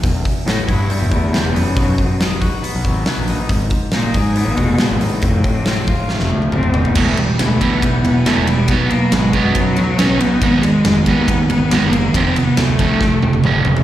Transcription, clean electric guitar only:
0.03 1.12 E2 medium
0.47 1.54 B3 medium
0.68 1.77 E4 medium
0.89 1.32 G3 medium
1.11 1.77 E3 medium
1.33 1.77 G3 medium
1.54 2.20 B3 medium
1.76 2.85 B2 medium
2.20 3.29 D#4 medium
2.41 3.50 F#4 medium
2.63 3.07 B3 medium
2.85 3.50 F#3 medium
3.08 3.51 B3 medium
3.30 3.51 D#4 medium
3.51 4.59 G#2 medium
3.94 5.02 D#4 medium
4.16 5.24 G#4 medium
4.37 4.80 B3 medium
4.59 5.24 G#3 medium
4.81 5.24 B3 medium
5.03 5.24 D#4 medium
5.24 6.32 F2 medium
5.66 6.74 C4 medium
5.88 6.96 F4 medium
6.11 6.52 A3 medium
6.31 6.96 F3 medium
6.53 6.96 A3 medium
6.75 6.97 C4 medium
6.97 8.05 E2 medium
7.17 7.82 G3 medium
7.39 8.48 E4 medium
7.60 8.46 B3 medium
7.83 8.24 G3 medium
8.03 8.69 E3 medium
8.26 8.69 G3 medium
8.47 8.90 B3 medium
8.68 9.77 B2 medium
8.90 9.54 B3 medium
9.12 10.20 F#4 medium
9.33 10.19 D#4 medium
9.55 9.98 B3 medium
9.77 10.42 F#3 medium
9.99 10.42 B3 medium
10.20 10.42 D#4 medium

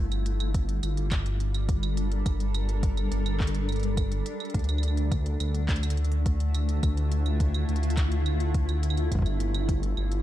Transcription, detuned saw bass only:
0.00 0.79 G1 loud
0.83 2.22 G1 medium
2.26 3.08 G1 loud
3.12 4.22 G1 medium
4.54 5.37 D2 loud
5.40 6.79 D2 medium
6.83 7.65 D2 loud
7.69 9.08 D2 medium
9.12 9.94 G1 loud
9.97 10.22 G1 medium

